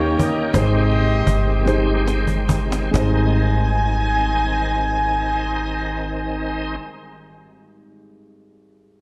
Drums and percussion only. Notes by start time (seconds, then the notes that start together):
0.19 cajon bass
0.54 cajon bass
0.90 cajon slap
1.27 cajon bass
1.66 cajon slap
1.67 cajon slap
2.07 cajon slap
2.27 cajon bass
2.49 cajon bass
2.72 cajon slap
2.94 cajon bass, cajon slap